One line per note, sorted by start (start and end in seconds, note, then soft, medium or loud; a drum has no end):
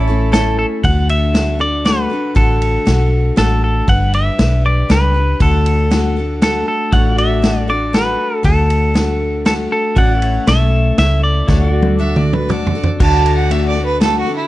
0.00 0.63 A1 medium
0.00 0.29 C#4 medium
0.00 0.29 E4 medium
0.00 0.83 E4 medium
0.00 0.29 A4 medium
0.00 0.30 A4 medium
0.00 0.83 A4 medium
0.00 0.05 D5 medium
0.05 0.33 E4 medium
0.05 0.33 A4 medium
0.05 0.84 C#5 medium
0.10 0.31 A3 soft
0.10 0.32 C#4 soft
0.32 0.83 A3 medium
0.32 0.79 C#4 medium
0.32 0.84 C#4 medium
0.32 0.80 E4 medium
0.32 0.84 E4 medium
0.32 0.57 A4 medium
0.32 0.80 A4 medium
0.32 0.84 A4 medium
0.32 snare medium
0.32 closed hi-hat medium
0.59 0.66 A4 medium
0.83 2.05 D2 medium
0.83 2.34 D3 medium
0.83 1.33 A3 medium
0.83 1.35 D4 medium
0.83 1.35 F#4 medium
0.83 1.35 A4 medium
0.83 1.08 F#5 medium
0.83 kick loud
0.83 ride medium
1.09 1.61 E5 loud
1.09 ride medium
1.34 1.60 A3 medium
1.34 1.60 D4 medium
1.34 1.59 F#4 medium
1.34 1.58 A4 medium
1.34 snare medium
1.34 ride medium
1.59 1.84 D4 soft
1.59 1.85 F#4 soft
1.59 1.85 A4 soft
1.59 1.87 D5 medium
1.85 2.10 A3 medium
1.85 2.11 D4 medium
1.85 2.10 F#4 medium
1.85 2.08 A4 medium
1.85 2.36 B4 medium
1.85 snare medium
1.85 ride medium
2.10 2.35 D4 soft
2.10 2.35 F#4 soft
2.10 2.36 A4 soft
2.35 2.77 A1 medium
2.35 2.86 D3 medium
2.35 2.84 A3 medium
2.35 2.86 D4 medium
2.35 2.86 F#4 medium
2.35 3.37 A4 medium
2.35 2.87 A4 medium
2.35 kick loud
2.35 ride medium
2.62 ride medium
2.85 3.30 B1 medium
2.85 3.35 A3 medium
2.85 3.37 D4 medium
2.85 3.37 F#4 medium
2.85 3.38 A4 medium
2.85 snare medium
2.85 ride medium
3.36 3.81 A1 medium
3.36 3.87 A3 medium
3.36 3.88 D4 medium
3.36 3.88 F#4 medium
3.36 3.63 A4 medium
3.36 3.89 A4 medium
3.36 snare medium
3.36 ride medium
3.64 3.89 A4 medium
3.88 4.28 G1 medium
3.88 4.37 G3 medium
3.88 4.39 D4 medium
3.88 4.39 G4 medium
3.88 4.39 B4 medium
3.88 4.14 F#5 loud
3.88 kick loud
3.88 ride medium
4.13 4.65 E5 medium
4.13 ride medium
4.38 4.82 B1 medium
4.38 4.87 G3 medium
4.38 4.89 D4 medium
4.38 4.90 G4 medium
4.38 4.90 B4 medium
4.38 snare medium
4.38 ride medium
4.66 4.91 D5 medium
4.89 5.33 C#2 medium
4.89 5.14 G3 medium
4.89 5.15 D4 medium
4.89 5.14 G4 medium
4.89 5.13 B4 medium
4.89 5.42 B4 medium
4.89 snare medium
4.89 ride medium
5.14 5.40 D4 soft
5.14 5.41 G4 soft
5.14 5.40 B4 medium
5.40 6.62 D2 medium
5.40 5.91 D3 medium
5.40 5.90 A3 medium
5.40 5.90 D4 medium
5.40 5.91 F#4 medium
5.40 5.93 A4 medium
5.40 6.42 A4 medium
5.40 kick loud
5.40 ride medium
5.66 ride medium
5.91 6.16 A3 medium
5.91 6.17 D4 medium
5.91 6.17 F#4 medium
5.91 6.15 A4 medium
5.91 snare medium
5.91 ride medium
6.17 6.42 D4 soft
6.17 6.43 F#4 soft
6.17 6.42 A4 soft
6.42 6.93 A3 medium
6.42 6.92 D4 medium
6.42 6.93 F#4 medium
6.42 6.67 A4 medium
6.42 6.94 A4 medium
6.42 snare medium
6.42 ride medium
6.68 6.94 A4 medium
6.92 8.14 A1 medium
6.92 7.43 D3 medium
6.92 7.42 A3 medium
6.92 7.42 D4 medium
6.92 7.17 E4 medium
6.92 7.43 F#4 medium
6.92 9.94 A4 medium
6.92 7.44 A4 medium
6.92 7.15 C#5 medium
6.92 7.18 F#5 medium
6.92 kick loud
6.92 ride medium
7.15 9.93 F#4 medium
7.15 9.95 D5 medium
7.15 7.69 E5 medium
7.15 ride medium
7.42 7.68 A3 medium
7.42 7.69 D4 medium
7.42 7.68 F#4 medium
7.42 7.66 A4 medium
7.42 snare medium
7.42 ride medium
7.68 7.93 D4 soft
7.68 7.94 F#4 soft
7.68 7.93 A4 soft
7.68 7.95 D5 medium
7.93 8.44 A3 medium
7.93 8.43 D4 medium
7.93 8.43 F#4 medium
7.93 8.45 A4 medium
7.93 8.45 B4 medium
7.93 snare medium
7.93 ride medium
8.43 9.66 D2 medium
8.43 8.94 D3 medium
8.43 8.94 A3 medium
8.43 8.94 D4 medium
8.43 8.95 F#4 medium
8.43 9.45 A4 medium
8.43 8.97 A4 medium
8.43 kick loud
8.43 ride medium
8.70 ride medium
8.94 9.45 A3 medium
8.94 9.45 D4 medium
8.94 9.46 F#4 medium
8.94 9.48 A4 medium
8.94 snare medium
8.94 ride medium
9.45 9.96 A3 medium
9.45 9.97 D4 medium
9.45 9.97 F#4 medium
9.45 9.53 A4 medium
9.45 9.98 A4 medium
9.45 snare medium
9.45 ride medium
9.72 9.98 A4 medium
9.96 10.37 A1 medium
9.96 10.47 A2 medium
9.96 10.47 E3 medium
9.96 10.46 A3 medium
9.96 10.46 C#4 medium
9.96 10.47 E4 medium
9.96 10.21 F#4 medium
9.96 11.47 A4 medium
9.96 10.49 A4 medium
9.96 10.18 D5 medium
9.96 10.48 F#5 medium
9.96 kick loud
9.96 ride medium
10.18 11.47 E4 medium
10.18 11.48 C#5 medium
10.18 ride medium
10.47 10.90 B1 medium
10.47 10.98 A3 medium
10.47 10.98 C#4 medium
10.47 10.99 E4 medium
10.47 11.00 A4 medium
10.47 10.98 E5 medium
10.47 snare medium
10.47 ride medium
10.98 11.41 C#2 medium
10.98 11.48 A3 medium
10.98 11.49 C#4 medium
10.98 11.49 E4 medium
10.98 11.50 A4 medium
10.98 11.23 E5 medium
10.98 snare medium
10.98 ride medium
11.24 12.46 D5 medium
11.48 12.70 D2 medium
11.48 11.99 D3 medium
11.48 11.97 A3 medium
11.48 11.98 D4 medium
11.48 11.73 E4 medium
11.48 12.00 F#4 medium
11.48 12.99 A4 medium
11.48 12.00 A4 medium
11.48 11.69 C#5 medium
11.48 kick loud
11.48 snare medium
11.69 12.98 F#4 medium
11.69 12.99 D5 medium
11.82 high tom medium
11.99 12.48 A3 medium
11.99 12.49 D4 medium
11.99 12.50 F#4 medium
11.99 12.50 A4 medium
11.99 12.18 E5 medium
12.16 12.35 D5 medium
12.16 mid tom medium
12.33 12.52 B4 medium
12.33 mid tom medium
12.49 12.75 A3 medium
12.49 12.75 D4 medium
12.49 12.75 F#4 medium
12.49 12.74 A4 medium
12.49 12.87 D5 medium
12.49 mid tom medium
12.67 floor tom medium
12.75 13.00 D4 soft
12.75 13.00 F#4 soft
12.75 13.00 A4 medium
12.84 floor tom medium
13.00 14.22 D2 medium
13.00 14.47 D3 medium
13.00 13.49 A3 medium
13.00 13.51 D4 medium
13.00 14.47 F#4 medium
13.00 13.51 F#4 medium
13.00 14.47 A4 medium
13.00 13.52 A4 medium
13.00 14.47 D5 medium
13.00 13.33 A5 medium
13.00 kick loud
13.00 crash loud
13.26 ride medium
13.35 13.53 F#5 medium
13.50 13.76 A3 medium
13.50 13.76 D4 medium
13.50 13.76 F#4 medium
13.50 13.74 A4 medium
13.50 13.67 E5 medium
13.50 ride medium
13.68 13.84 D5 medium
13.75 14.01 D4 soft
13.75 14.01 F#4 soft
13.75 14.01 A4 soft
13.85 14.01 B4 medium
14.01 14.26 A3 medium
14.01 14.27 D4 medium
14.01 14.27 F#4 medium
14.01 14.18 A4 loud
14.01 14.25 A4 medium
14.01 snare medium
14.01 ride medium
14.19 14.35 F#4 medium
14.26 14.47 D4 soft
14.26 14.47 F#4 soft
14.26 14.47 A4 soft
14.36 14.47 E4 medium